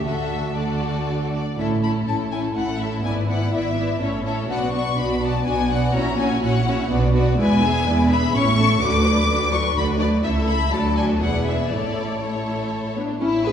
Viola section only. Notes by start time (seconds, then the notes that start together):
0.03 A3 D4
0.56 A3 D4
1.57 A3 C#4
1.83 A3 C#4
2.06 A3 C#4
2.30 A3 C#4
2.55 A3 C#4
2.79 A3 C#4
3.04 B3 E4
3.29 B3 E4
3.53 B3 E4
3.76 B3 E4
3.99 C#4 E4
4.25 C#4 E4
4.50 B3 D4
4.74 B3 D4
4.98 B3 D4
5.23 B3 D4
5.47 B3 D4
5.72 B3 D4
5.95 C#4 E4
6.20 C#4 E4
6.43 C#4 E4
6.66 C#4 E4
6.90 B3 D4
7.14 B3 D4
7.38 G#3 E4
7.62 B3 D4
7.86 G#3 E4
8.10 B3 D4
8.34 C#4 E4
8.58 A3 C#4
8.80 D3 F#4
9.06 F#3 D4
9.28 D3 F#4
9.52 F#3 D4
9.75 D3 F#4
9.99 F#3 D4
10.23 A3 E4
10.72 F#3 F#4
11.21 B3 E4
11.71 A3 E4
12.22 A3 E4
12.98 B3
13.21 C#4
13.46 G#4